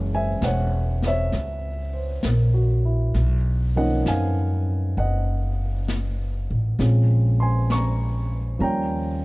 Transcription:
Already playing: upright bass F#1, grand piano E3 G#3 A#3 C#4
0.15 grand piano E5 G#5
0.42 upright bass E1, grand piano C#5 F#5, snare, hi-hat pedal
1.02 snare
1.07 grand piano C#5 E5
1.32 upright bass C#2, brush sweep, snare
1.93 grand piano C5
2.23 upright bass A#1, grand piano A#4, snare, hi-hat pedal
2.54 grand piano F#4
2.85 grand piano E4
3.14 upright bass B1, brush sweep, snare
3.76 grand piano D#3 F3 A#3 C#4 D#5 F#5
4.06 upright bass F#2, grand piano F5 G#5, snare, hi-hat pedal
4.97 upright bass F#1, grand piano D#5 F#5, brush sweep
5.88 snare, hi-hat pedal
6.50 upright bass A1
6.79 upright bass A#1, grand piano F3 G#3 C4 C#4, brush sweep, snare
7.40 grand piano G#5 C6
7.70 grand piano C#6, snare, hi-hat pedal
7.74 grand piano A#5
8.59 upright bass D#2, grand piano F3 G3 A#3 C#4 A#5, brush sweep
8.63 grand piano G5

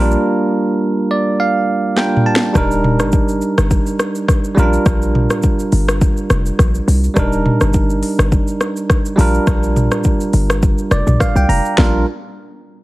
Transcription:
Already playing: 808-style bass A#1, tine electric piano G3 A#3 F4
0.00 tine electric piano D4 A#4
0.11 shaker
1.11 tine electric piano D5
1.40 tine electric piano F5
1.96 tine electric piano G3 A#3 D4 F4 A#4 G5, snare
2.17 mid tom
2.26 tine electric piano A5
2.36 snare
2.53 808-style bass D#1, tine electric piano G3 D4 D#4, kick, cross-stick, shaker
2.58 tine electric piano A#4
2.71 shaker
2.84 mid tom
2.99 808-style bass G1, cross-stick, shaker
3.12 kick, shaker
3.29 shaker
3.41 shaker
3.58 808-style bass G1, cross-stick, shaker
3.71 kick, shaker
3.86 shaker
3.99 cross-stick, shaker
4.15 shaker
4.28 kick, cross-stick, shaker
4.44 shaker
4.54 808-style bass A#1, tine electric piano G3 C#4 F4, shaker
4.60 tine electric piano D4 A#4
4.73 shaker
4.86 808-style bass A#1, kick, cross-stick, shaker
5.02 shaker
5.15 mid tom
5.30 cross-stick, shaker
5.43 kick, shaker
5.59 shaker
5.72 808-style bass G1, open hi-hat, shaker
5.88 cross-stick, shaker
6.01 kick, shaker
6.17 shaker
6.30 808-style bass F1, cross-stick, shaker
6.46 shaker
6.59 808-style bass A#1, kick, cross-stick, shaker
6.75 shaker
6.88 808-style bass C2, open hi-hat, shaker
7.04 shaker
7.14 808-style bass D#1, tine electric piano G3 D4 D#4, kick, cross-stick, shaker
7.19 tine electric piano A#4
7.32 shaker
7.46 mid tom
7.61 808-style bass G1, cross-stick, shaker
7.73 kick, shaker
7.90 shaker
8.03 open hi-hat, shaker
8.19 808-style bass G1, cross-stick, shaker
8.32 kick, shaker
8.48 shaker
8.61 cross-stick, shaker
8.77 shaker
8.90 kick, cross-stick, shaker
9.05 shaker
9.16 808-style bass A#1, tine electric piano G3 D4 F4, open hi-hat, shaker
9.21 tine electric piano A#4
9.34 shaker
9.47 808-style bass A#1, kick, cross-stick, shaker
9.63 shaker
9.76 mid tom, shaker
9.91 cross-stick, shaker
10.04 kick, shaker
10.21 shaker
10.33 808-style bass G1, open hi-hat, shaker
10.50 cross-stick, shaker
10.63 kick, shaker
10.78 shaker
10.91 808-style bass F1, tine electric piano D5, cross-stick, shaker
11.07 808-style bass A#1, mid tom, shaker
11.20 tine electric piano F5, kick, cross-stick, shaker
11.36 808-style bass C2, tine electric piano G5, shaker
11.49 808-style bass F1, tine electric piano A#5, open hi-hat
11.65 shaker
11.78 808-style bass A#1, tine electric piano G3 D4 F4 A#4, kick, snare

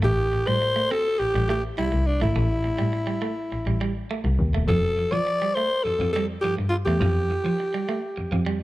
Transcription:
0.02 double bass A1, clean electric guitar A3, alto saxophone G4
0.33 double bass A2, muted clean electric guitar stroke
0.47 double bass A2, clean electric guitar G3, alto saxophone C5
0.62 muted clean electric guitar stroke
0.76 clean electric guitar A3
0.91 clean electric guitar C4, alto saxophone A4
1.19 double bass A1, alto saxophone G4, muted clean electric guitar stroke
1.35 double bass A1, clean electric guitar G3
1.49 clean electric guitar A3, alto saxophone G4
1.78 double bass C2, clean electric guitar G3, alto saxophone E4
1.92 double bass C2, muted clean electric guitar stroke
2.07 alto saxophone D4
2.21 double bass G#1, clean electric guitar A3, alto saxophone E4
2.36 double bass A1, clean electric guitar A3
2.64 double bass A2, muted clean electric guitar stroke
2.78 double bass A2, clean electric guitar G3
2.93 muted clean electric guitar stroke
3.07 clean electric guitar G3
3.22 clean electric guitar A3
3.52 double bass A1, muted clean electric guitar stroke
3.67 double bass A1, clean electric guitar G3
3.81 clean electric guitar G3
4.11 clean electric guitar A3
4.25 double bass C2, muted clean electric guitar stroke
4.39 double bass D#2
4.53 double bass E1, clean electric guitar A3
4.68 double bass F2, clean electric guitar F3, alto saxophone A4
4.97 double bass F3, muted clean electric guitar stroke
5.12 double bass F3, clean electric guitar F3, alto saxophone D5
5.27 muted clean electric guitar stroke
5.42 clean electric guitar G3
5.55 clean electric guitar A3, alto saxophone C5
5.84 double bass F2, alto saxophone A4, muted clean electric guitar stroke
6.00 double bass F2, clean electric guitar F3
6.13 clean electric guitar G3, alto saxophone A4
6.41 double bass G2, clean electric guitar F3, alto saxophone G4
6.58 double bass G2, muted clean electric guitar stroke
6.69 alto saxophone F4
6.85 double bass E2, clean electric guitar A3, alto saxophone G4
7.00 double bass F2, clean electric guitar F3
7.30 double bass F3, muted clean electric guitar stroke
7.45 double bass F3, clean electric guitar F3
7.60 muted clean electric guitar stroke
7.74 clean electric guitar G3
7.89 clean electric guitar A3
8.18 double bass F2, muted clean electric guitar stroke
8.32 double bass F2, clean electric guitar F3
8.46 clean electric guitar G3

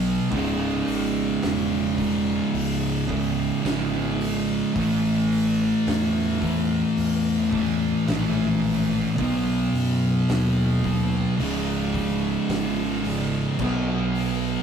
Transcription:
Already playing: fingered electric bass B1, distorted electric guitar B2 F#3 B3
0.31 fingered electric bass C#1, distorted electric guitar C#2 G#2 C#3, kick, open hi-hat
0.87 fingered electric bass G#1, open hi-hat
1.42 fingered electric bass E1, snare, open hi-hat
1.98 distorted electric guitar C#2 G#2 C#3, kick, open hi-hat
2.53 fingered electric bass C#1, open hi-hat
3.08 distorted electric guitar C#2 G#2 C#3, kick, open hi-hat
3.63 fingered electric bass G#1, distorted electric guitar C#2 G#2, snare, open hi-hat
3.67 distorted electric guitar C#3
4.21 open hi-hat
4.75 fingered electric bass A1, distorted electric guitar A2 E3 A3, kick, open hi-hat
5.32 open hi-hat
5.87 fingered electric bass E2, snare, open hi-hat
6.41 distorted electric guitar A2 E3 A3, kick, open hi-hat
6.97 fingered electric bass E2, open hi-hat
7.51 distorted electric guitar A2 E3 A3, kick, open hi-hat
8.05 fingered electric bass A#1, distorted electric guitar A2 E3 A3, snare, open hi-hat
8.63 open hi-hat
9.17 fingered electric bass B1, distorted electric guitar B2 F#3 B3, kick, open hi-hat
9.73 fingered electric bass F#2, open hi-hat
10.29 fingered electric bass D#2, snare, open hi-hat
10.84 distorted electric guitar B2 F#3 B3, kick, open hi-hat
11.38 fingered electric bass C#1, distorted electric guitar C#2 G#2 C#3, open hi-hat
11.94 kick, open hi-hat
12.49 fingered electric bass G#1, snare, open hi-hat
13.04 distorted electric guitar C#2 G#2 C#3, open hi-hat
13.59 fingered electric bass B1, distorted electric guitar B2 F#3, kick, crash
13.63 distorted electric guitar B3
14.15 open hi-hat

